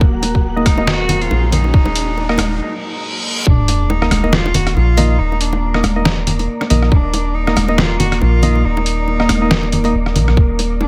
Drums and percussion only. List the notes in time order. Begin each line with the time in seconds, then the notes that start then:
0.01 kick, high bongo
0.22 closed hi-hat, high bongo
0.35 kick
0.57 high bongo
0.65 kick, cross-stick, closed hi-hat, high conga
0.78 high bongo
0.87 snare, low conga
1.09 closed hi-hat, high bongo, low conga
1.21 closed hi-hat
1.31 high bongo
1.52 closed hi-hat, low conga
1.64 high bongo
1.74 kick
1.86 high bongo
1.95 closed hi-hat
2.17 high bongo
2.29 cross-stick
2.38 cross-stick, closed hi-hat, high bongo, high conga
3.47 kick
3.68 closed hi-hat, high bongo
3.90 high bongo
4.02 cross-stick
4.11 cross-stick, closed hi-hat, high conga
4.24 high bongo
4.33 snare, low conga
4.46 high bongo
4.54 closed hi-hat, low conga
4.67 cross-stick, closed hi-hat
4.77 high bongo
4.97 closed hi-hat, high bongo, low conga
5.32 high bongo
5.41 closed hi-hat
5.53 high bongo
5.74 cross-stick
5.83 cross-stick, closed hi-hat, high bongo, high conga
6.05 snare, high bongo, low conga
6.27 closed hi-hat, low conga
6.39 closed hi-hat, high bongo
6.61 cross-stick, high bongo
6.70 closed hi-hat, low conga
6.83 cross-stick
6.92 kick, high bongo
7.14 closed hi-hat, high bongo
7.47 cross-stick, high bongo
7.56 cross-stick, closed hi-hat, high conga
7.68 high bongo
7.78 snare, low conga
8.00 closed hi-hat, high bongo, low conga
8.12 cross-stick, closed hi-hat
8.21 high bongo
8.43 closed hi-hat, low conga
8.55 high bongo
8.77 high bongo
8.86 closed hi-hat
9.08 high bongo
9.20 cross-stick
9.29 cross-stick, closed hi-hat, high bongo, high conga
9.51 snare, low conga
9.63 high bongo
9.72 closed hi-hat, low conga
9.84 closed hi-hat, high bongo
10.06 cross-stick
10.16 closed hi-hat, high bongo, low conga
10.28 cross-stick
10.37 kick
10.59 closed hi-hat, high bongo
10.81 high bongo